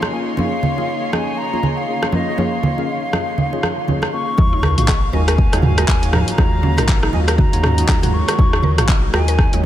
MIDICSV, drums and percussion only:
0, 0, Header, 1, 2, 480
1, 0, Start_track
1, 0, Tempo, 500000
1, 368, Time_signature, 4, 2, 24, 8
1, 9270, End_track
2, 0, Start_track
2, 0, Title_t, "Drums"
2, 20, Note_on_c, 9, 62, 45
2, 25, Note_on_c, 9, 37, 85
2, 116, Note_off_c, 9, 62, 0
2, 121, Note_off_c, 9, 37, 0
2, 357, Note_on_c, 9, 62, 50
2, 370, Note_on_c, 9, 63, 91
2, 453, Note_off_c, 9, 62, 0
2, 466, Note_off_c, 9, 63, 0
2, 604, Note_on_c, 9, 64, 85
2, 700, Note_off_c, 9, 64, 0
2, 748, Note_on_c, 9, 62, 38
2, 844, Note_off_c, 9, 62, 0
2, 1084, Note_on_c, 9, 62, 48
2, 1086, Note_on_c, 9, 37, 74
2, 1087, Note_on_c, 9, 63, 56
2, 1180, Note_off_c, 9, 62, 0
2, 1182, Note_off_c, 9, 37, 0
2, 1183, Note_off_c, 9, 63, 0
2, 1473, Note_on_c, 9, 62, 36
2, 1566, Note_on_c, 9, 64, 89
2, 1569, Note_off_c, 9, 62, 0
2, 1662, Note_off_c, 9, 64, 0
2, 1944, Note_on_c, 9, 37, 82
2, 1944, Note_on_c, 9, 62, 51
2, 2040, Note_off_c, 9, 37, 0
2, 2040, Note_off_c, 9, 62, 0
2, 2040, Note_on_c, 9, 63, 102
2, 2136, Note_off_c, 9, 63, 0
2, 2283, Note_on_c, 9, 62, 57
2, 2286, Note_on_c, 9, 63, 93
2, 2379, Note_off_c, 9, 62, 0
2, 2382, Note_off_c, 9, 63, 0
2, 2526, Note_on_c, 9, 64, 96
2, 2622, Note_off_c, 9, 64, 0
2, 2669, Note_on_c, 9, 62, 37
2, 2765, Note_off_c, 9, 62, 0
2, 3006, Note_on_c, 9, 37, 77
2, 3006, Note_on_c, 9, 63, 58
2, 3007, Note_on_c, 9, 62, 57
2, 3102, Note_off_c, 9, 37, 0
2, 3102, Note_off_c, 9, 63, 0
2, 3103, Note_off_c, 9, 62, 0
2, 3243, Note_on_c, 9, 64, 87
2, 3339, Note_off_c, 9, 64, 0
2, 3387, Note_on_c, 9, 62, 41
2, 3483, Note_off_c, 9, 62, 0
2, 3487, Note_on_c, 9, 37, 78
2, 3490, Note_on_c, 9, 63, 59
2, 3583, Note_off_c, 9, 37, 0
2, 3586, Note_off_c, 9, 63, 0
2, 3722, Note_on_c, 9, 63, 58
2, 3727, Note_on_c, 9, 64, 87
2, 3818, Note_off_c, 9, 63, 0
2, 3823, Note_off_c, 9, 64, 0
2, 3857, Note_on_c, 9, 62, 52
2, 3865, Note_on_c, 9, 37, 86
2, 3953, Note_off_c, 9, 62, 0
2, 3961, Note_off_c, 9, 37, 0
2, 4202, Note_on_c, 9, 62, 56
2, 4207, Note_on_c, 9, 36, 121
2, 4207, Note_on_c, 9, 63, 87
2, 4298, Note_off_c, 9, 62, 0
2, 4303, Note_off_c, 9, 36, 0
2, 4303, Note_off_c, 9, 63, 0
2, 4443, Note_on_c, 9, 64, 102
2, 4446, Note_on_c, 9, 37, 95
2, 4539, Note_off_c, 9, 64, 0
2, 4542, Note_off_c, 9, 37, 0
2, 4587, Note_on_c, 9, 62, 41
2, 4588, Note_on_c, 9, 42, 60
2, 4588, Note_on_c, 9, 45, 80
2, 4683, Note_off_c, 9, 62, 0
2, 4684, Note_off_c, 9, 42, 0
2, 4684, Note_off_c, 9, 45, 0
2, 4687, Note_on_c, 9, 37, 78
2, 4687, Note_on_c, 9, 39, 108
2, 4688, Note_on_c, 9, 36, 123
2, 4783, Note_off_c, 9, 37, 0
2, 4783, Note_off_c, 9, 39, 0
2, 4784, Note_off_c, 9, 36, 0
2, 4925, Note_on_c, 9, 62, 55
2, 4928, Note_on_c, 9, 63, 70
2, 5021, Note_off_c, 9, 62, 0
2, 5024, Note_off_c, 9, 63, 0
2, 5068, Note_on_c, 9, 37, 94
2, 5068, Note_on_c, 9, 42, 60
2, 5164, Note_off_c, 9, 37, 0
2, 5164, Note_off_c, 9, 42, 0
2, 5168, Note_on_c, 9, 36, 119
2, 5264, Note_off_c, 9, 36, 0
2, 5304, Note_on_c, 9, 62, 40
2, 5309, Note_on_c, 9, 37, 82
2, 5309, Note_on_c, 9, 42, 47
2, 5398, Note_on_c, 9, 64, 97
2, 5400, Note_off_c, 9, 62, 0
2, 5405, Note_off_c, 9, 37, 0
2, 5405, Note_off_c, 9, 42, 0
2, 5407, Note_on_c, 9, 45, 94
2, 5494, Note_off_c, 9, 64, 0
2, 5503, Note_off_c, 9, 45, 0
2, 5547, Note_on_c, 9, 37, 96
2, 5547, Note_on_c, 9, 42, 61
2, 5643, Note_off_c, 9, 37, 0
2, 5643, Note_off_c, 9, 42, 0
2, 5647, Note_on_c, 9, 36, 122
2, 5648, Note_on_c, 9, 39, 106
2, 5743, Note_off_c, 9, 36, 0
2, 5744, Note_off_c, 9, 39, 0
2, 5780, Note_on_c, 9, 62, 51
2, 5787, Note_on_c, 9, 42, 47
2, 5876, Note_off_c, 9, 62, 0
2, 5883, Note_off_c, 9, 42, 0
2, 5885, Note_on_c, 9, 37, 93
2, 5885, Note_on_c, 9, 45, 81
2, 5888, Note_on_c, 9, 63, 108
2, 5981, Note_off_c, 9, 37, 0
2, 5981, Note_off_c, 9, 45, 0
2, 5984, Note_off_c, 9, 63, 0
2, 6026, Note_on_c, 9, 42, 59
2, 6122, Note_off_c, 9, 42, 0
2, 6125, Note_on_c, 9, 63, 106
2, 6126, Note_on_c, 9, 37, 85
2, 6128, Note_on_c, 9, 36, 127
2, 6133, Note_on_c, 9, 62, 52
2, 6221, Note_off_c, 9, 63, 0
2, 6222, Note_off_c, 9, 37, 0
2, 6224, Note_off_c, 9, 36, 0
2, 6229, Note_off_c, 9, 62, 0
2, 6366, Note_on_c, 9, 64, 90
2, 6462, Note_off_c, 9, 64, 0
2, 6502, Note_on_c, 9, 62, 39
2, 6510, Note_on_c, 9, 37, 96
2, 6510, Note_on_c, 9, 42, 58
2, 6510, Note_on_c, 9, 45, 78
2, 6598, Note_off_c, 9, 62, 0
2, 6606, Note_off_c, 9, 37, 0
2, 6606, Note_off_c, 9, 42, 0
2, 6606, Note_off_c, 9, 45, 0
2, 6608, Note_on_c, 9, 36, 126
2, 6610, Note_on_c, 9, 39, 104
2, 6704, Note_off_c, 9, 36, 0
2, 6706, Note_off_c, 9, 39, 0
2, 6749, Note_on_c, 9, 37, 83
2, 6844, Note_on_c, 9, 62, 56
2, 6845, Note_off_c, 9, 37, 0
2, 6845, Note_on_c, 9, 63, 74
2, 6940, Note_off_c, 9, 62, 0
2, 6941, Note_off_c, 9, 63, 0
2, 6989, Note_on_c, 9, 37, 98
2, 6989, Note_on_c, 9, 42, 59
2, 7085, Note_off_c, 9, 37, 0
2, 7085, Note_off_c, 9, 42, 0
2, 7089, Note_on_c, 9, 36, 124
2, 7092, Note_on_c, 9, 64, 107
2, 7185, Note_off_c, 9, 36, 0
2, 7188, Note_off_c, 9, 64, 0
2, 7225, Note_on_c, 9, 62, 41
2, 7231, Note_on_c, 9, 42, 47
2, 7321, Note_off_c, 9, 62, 0
2, 7327, Note_off_c, 9, 42, 0
2, 7330, Note_on_c, 9, 37, 96
2, 7330, Note_on_c, 9, 45, 93
2, 7426, Note_off_c, 9, 37, 0
2, 7426, Note_off_c, 9, 45, 0
2, 7469, Note_on_c, 9, 42, 62
2, 7565, Note_off_c, 9, 42, 0
2, 7569, Note_on_c, 9, 36, 127
2, 7570, Note_on_c, 9, 37, 86
2, 7570, Note_on_c, 9, 39, 107
2, 7575, Note_on_c, 9, 63, 75
2, 7665, Note_off_c, 9, 36, 0
2, 7666, Note_off_c, 9, 37, 0
2, 7666, Note_off_c, 9, 39, 0
2, 7671, Note_off_c, 9, 63, 0
2, 7706, Note_on_c, 9, 62, 54
2, 7712, Note_on_c, 9, 42, 47
2, 7712, Note_on_c, 9, 45, 77
2, 7802, Note_off_c, 9, 62, 0
2, 7808, Note_off_c, 9, 42, 0
2, 7808, Note_off_c, 9, 45, 0
2, 7953, Note_on_c, 9, 37, 100
2, 7953, Note_on_c, 9, 42, 59
2, 8049, Note_off_c, 9, 37, 0
2, 8049, Note_off_c, 9, 42, 0
2, 8050, Note_on_c, 9, 36, 127
2, 8051, Note_on_c, 9, 63, 106
2, 8058, Note_on_c, 9, 62, 52
2, 8146, Note_off_c, 9, 36, 0
2, 8147, Note_off_c, 9, 63, 0
2, 8154, Note_off_c, 9, 62, 0
2, 8191, Note_on_c, 9, 37, 87
2, 8282, Note_on_c, 9, 64, 99
2, 8287, Note_off_c, 9, 37, 0
2, 8378, Note_off_c, 9, 64, 0
2, 8431, Note_on_c, 9, 37, 101
2, 8431, Note_on_c, 9, 42, 58
2, 8431, Note_on_c, 9, 45, 77
2, 8431, Note_on_c, 9, 62, 36
2, 8527, Note_off_c, 9, 37, 0
2, 8527, Note_off_c, 9, 42, 0
2, 8527, Note_off_c, 9, 45, 0
2, 8527, Note_off_c, 9, 62, 0
2, 8530, Note_on_c, 9, 36, 127
2, 8531, Note_on_c, 9, 39, 98
2, 8626, Note_off_c, 9, 36, 0
2, 8627, Note_off_c, 9, 39, 0
2, 8770, Note_on_c, 9, 63, 75
2, 8771, Note_on_c, 9, 37, 101
2, 8774, Note_on_c, 9, 62, 54
2, 8866, Note_off_c, 9, 63, 0
2, 8867, Note_off_c, 9, 37, 0
2, 8870, Note_off_c, 9, 62, 0
2, 8909, Note_on_c, 9, 42, 58
2, 9005, Note_off_c, 9, 42, 0
2, 9010, Note_on_c, 9, 36, 127
2, 9010, Note_on_c, 9, 37, 82
2, 9106, Note_off_c, 9, 36, 0
2, 9106, Note_off_c, 9, 37, 0
2, 9149, Note_on_c, 9, 42, 46
2, 9158, Note_on_c, 9, 62, 40
2, 9245, Note_off_c, 9, 42, 0
2, 9254, Note_off_c, 9, 62, 0
2, 9270, End_track
0, 0, End_of_file